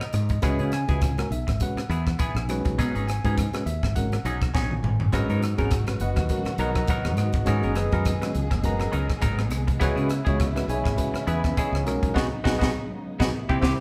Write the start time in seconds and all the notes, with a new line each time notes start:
Already playing: D#5
0.01 cross-stick
0.13 G#2, muted clean electric guitar stroke, cross-stick, closed hi-hat
0.29 muted clean electric guitar stroke, kick, closed hi-hat
0.42 C#2 G#3 B3 C#4 E4 F#4 G#4 B4, kick, cross-stick, closed hi-hat
0.59 C#3 B3 E4 G#4, closed hi-hat
0.72 G#5, muted clean electric guitar stroke, cross-stick, closed hi-hat
0.88 C#2 G#3 C#4 E4 F#4 G#4 B4, kick, closed hi-hat
1.01 muted clean electric guitar stroke, kick, cross-stick, closed hi-hat
1.18 G#3 C#4 F#4 A#4, muted clean electric guitar stroke, cross-stick, closed hi-hat
1.30 B1 F#4 G#4 E5, closed hi-hat
1.47 G#1, muted clean electric guitar stroke, kick, cross-stick, closed hi-hat
1.60 G#3 C#4 F#4 B4 F#5, kick, closed hi-hat
1.76 muted fretless electric bass stroke, muted clean electric guitar stroke, cross-stick, closed hi-hat
1.89 E2 B3 E4 F#4 G#4 A#4, closed hi-hat
2.06 muted clean electric guitar stroke, kick, cross-stick
2.19 B3 E4 G#4 G#5, kick, closed hi-hat
2.35 A#1, cross-stick
2.48 B1 G#3 C#4 F#4 B4, muted clean electric guitar stroke, cross-stick, closed hi-hat
2.65 B1, muted clean electric guitar stroke, kick, closed hi-hat
2.79 B2 F#3 C#4 D#4 G#4, kick, cross-stick, closed hi-hat
2.95 G#1 F#3 C#4 D#4 G#4, closed hi-hat
3.07 G#5, muted clean electric guitar stroke, cross-stick, closed hi-hat
3.24 G#2 G#3 C#4 D#4 F#4 G#4 B4, kick, closed hi-hat
3.38 muted clean electric guitar stroke, kick, cross-stick, closed hi-hat
3.53 G#3 C#4 F#4 B4, muted clean electric guitar stroke, cross-stick, closed hi-hat
3.66 D#2 F#4 B4 E5, closed hi-hat
3.83 G#1, muted clean electric guitar stroke, kick, cross-stick
3.96 G#3 C#4 F#4 A#4 F#5, kick, closed hi-hat
4.12 muted clean electric guitar stroke, cross-stick, closed hi-hat
4.25 B1 F#3 C#4 D#4 F#4 G#4 C#5, closed hi-hat
4.42 muted clean electric guitar stroke, kick, cross-stick
4.54 A#1 F#3 C#4 D#4 G#4 G#5, kick, snare
4.71 high tom
4.83 G#1, muted clean electric guitar stroke, mid tom
5.00 muted clean electric guitar stroke, floor tom
5.13 G#1 D#3 F#3 G#3 B3 C#4 D#4 F#4 A#4 B4, kick, cross-stick, closed hi-hat
5.29 G#2 F#3 B3 D#4 A#4, closed hi-hat
5.42 muted clean electric guitar stroke, cross-stick, closed hi-hat
5.57 G#1 G#3 B3 C#4 D#4 F#4 G#4 A#4, kick, closed hi-hat
5.71 muted clean electric guitar stroke, kick, cross-stick, closed hi-hat
5.87 G#3 C#4 F#4 B4, muted clean electric guitar stroke, cross-stick, closed hi-hat
6.00 F#1 F#4 B4 C#5 D#5 F#5, closed hi-hat
6.16 D#2, muted clean electric guitar stroke, kick, cross-stick, closed hi-hat
6.29 G#3 C#4 F#4 A#4, kick, closed hi-hat
6.45 muted fretless electric bass stroke, muted clean electric guitar stroke, cross-stick, closed hi-hat
6.58 B1 F#3 B3 D#4 F#4 A#4 B4 D#5 F#5 A#5, closed hi-hat
6.75 muted clean electric guitar stroke, kick, cross-stick
6.87 F#3 B3 D#4 F#4 A#4 B4 D#5 F#5, kick, closed hi-hat
7.05 D#2, cross-stick
7.16 G#2, muted clean electric guitar stroke, cross-stick, closed hi-hat
7.33 G#1, muted clean electric guitar stroke, kick, closed hi-hat
7.45 G#2 F#3 G#3 B3 C#4 D#4 F#4 G#4 A#4, kick, cross-stick, closed hi-hat
7.63 F#1 F#3 B3 D#4 A#4, closed hi-hat
7.75 G#4 B4 D#5 G#5, muted clean electric guitar stroke, cross-stick, closed hi-hat
7.92 F#2 G#3 B3 C#4 D#4 F#4 G#4 A#4, kick, closed hi-hat
8.05 muted clean electric guitar stroke, kick, cross-stick, closed hi-hat
8.21 G#3 C#4 F#4 B4, muted clean electric guitar stroke, cross-stick, closed hi-hat
8.34 C#2 F#4 C#5, closed hi-hat
8.51 F#1, muted clean electric guitar stroke, kick, cross-stick
8.63 G#3 C#4 F#4 A#4 B4 D#5 F#5 A#5, kick, closed hi-hat
8.80 muted clean electric guitar stroke, cross-stick, closed hi-hat
8.92 C#2 F#3 B3 D#4 F#4 A#4 B4, closed hi-hat
9.09 muted clean electric guitar stroke, kick, cross-stick
9.21 G#1 F#3 B3 D#4 A#4, kick, closed hi-hat
9.39 cross-stick
9.50 C2, muted clean electric guitar stroke, cross-stick, closed hi-hat
9.67 muted clean electric guitar stroke, kick, closed hi-hat
9.80 C#2 C#3 G#3 B3 C#4 E4 F#4 G#4 B4, kick, cross-stick, closed hi-hat
9.84 E3
9.96 C#3 B3 E4 G#4, closed hi-hat
10.09 muted clean electric guitar stroke, cross-stick, closed hi-hat
10.25 C#2 G#3 C#4 E4 F#4 G#4 C#5, kick, closed hi-hat
10.38 muted clean electric guitar stroke, kick, cross-stick, closed hi-hat
10.55 G#3 C#4 F#4 B4, muted clean electric guitar stroke, cross-stick, closed hi-hat
10.68 B1 F#4 G#4 B4 C#5 E5 G#5, closed hi-hat
10.84 G#1, muted clean electric guitar stroke, kick, cross-stick, closed hi-hat
10.96 G#3 C#4 F#4 B4, kick, closed hi-hat
11.14 muted fretless electric bass stroke, muted clean electric guitar stroke, cross-stick, closed hi-hat
11.27 E2 B3 E4 F#4 G#4 B4 E5 G#5 B5, closed hi-hat
11.44 muted clean electric guitar stroke, kick, cross-stick
11.57 B3 E4 G#4 C#5 D#5 G#5, kick, closed hi-hat
11.73 C#2, cross-stick
11.85 B1 F#3 G#3 C#4 D#4 F#4 A#4, muted clean electric guitar stroke, cross-stick, closed hi-hat
12.03 B1, muted clean electric guitar stroke, kick, closed hi-hat
12.14 B1 B3 D#4 F#4 G#4 B4 D#5 F#5, kick, snare
12.44 B1 B3 D#4 F#4 G#4 B4 D#5 F#5, kick, snare
12.59 B1 B3 D#4 F#4 G#4 B4 D#5 F#5, kick, snare
13.20 B1 B3 D#4 F#4 G#4 B4 D#5 F#5, kick, snare
13.33 C3 E3 G3 A#3 E4
13.49 C2 C4 E4 G4 C5 E5 G5, kick
13.61 C2 C4 E4 G4 C5 E5 G5, kick, snare